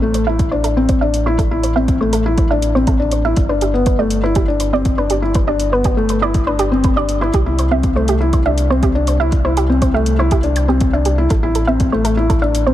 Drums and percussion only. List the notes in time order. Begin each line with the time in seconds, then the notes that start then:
0.14 closed hi-hat
0.39 kick, closed hi-hat
0.64 closed hi-hat
0.89 kick, closed hi-hat
1.14 closed hi-hat
1.39 kick, closed hi-hat
1.63 closed hi-hat
1.88 kick, closed hi-hat
2.13 closed hi-hat
2.38 kick, closed hi-hat
2.62 closed hi-hat
2.87 kick, closed hi-hat
3.12 closed hi-hat
3.36 kick, closed hi-hat
3.61 closed hi-hat
3.86 kick, closed hi-hat
4.10 closed hi-hat
4.35 kick, closed hi-hat
4.60 closed hi-hat
4.85 kick, closed hi-hat
5.10 closed hi-hat
5.34 kick, closed hi-hat
5.60 closed hi-hat
5.84 kick, closed hi-hat
6.09 closed hi-hat
6.34 kick, closed hi-hat
6.59 closed hi-hat
6.84 kick, closed hi-hat
7.09 closed hi-hat
7.34 kick, closed hi-hat
7.59 closed hi-hat
7.83 kick, closed hi-hat
8.08 closed hi-hat
8.33 kick, closed hi-hat
8.58 closed hi-hat
8.83 kick, closed hi-hat
9.07 closed hi-hat
9.32 kick, closed hi-hat
9.57 closed hi-hat
9.82 kick, closed hi-hat
10.06 closed hi-hat
10.31 kick, closed hi-hat
10.43 closed hi-hat
10.56 closed hi-hat
10.80 kick, closed hi-hat
11.05 closed hi-hat
11.30 kick, closed hi-hat
11.55 closed hi-hat
11.80 kick, closed hi-hat
12.05 closed hi-hat
12.30 kick, closed hi-hat
12.55 closed hi-hat